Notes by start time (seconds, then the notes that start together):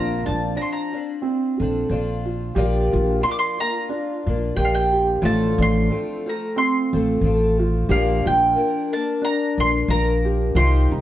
Already playing: A#1 A#2 F3 C4 D4 F4 A#5
0.26 A#1 D4 A5
0.55 F3 C4 D4 F4 A#5
0.62 C6
0.73 A#5
0.93 C4 D4 F4
1.22 C4 F4
1.59 A#1 C4 D4 F4 A4
1.89 A#1 F3 C4 D4
1.93 F4
2.25 F4
2.55 A#1 A#2 F3 A#3 D4 F4 G4
2.93 A#1 F4
3.21 F3 A#3 D4 F4 C6
3.31 D6
3.39 C6
3.58 A#3 D4 F4 A#5
3.89 D4
4.27 A#1 A#3 D4 F4
4.56 A#1 F3 A#3 D4 F4 G4 G5
4.65 F5
4.75 G5
4.93 G4
5.21 A1 A2 D3 F3 A3 C4 F4 A5
5.58 A1 D4
5.62 C6
5.90 F3 A3 C4 F4
6.26 F3 A3 C4 F4 A#5
6.56 C4 C6
6.93 A1 F3 A3 C4 F4
7.21 A1 F3 A3 C4 A4
7.26 F4
7.59 F4
7.89 A#1 A#2 F3 A#3 D4 G4 A#4 F5
8.25 A#1 F4 G5
8.56 F3 A#3 D4 A#4
8.92 A#3 D4 A#4 A5
9.22 D4 A#5
9.58 A#1 D4 A#4 C6
9.62 A#3
9.88 A#1 F3 A#3 D4 A#4 A#5
10.25 G4
10.55 C2 C3 D#3 C4 D#4 F4 G4 C6
10.91 C2 D#4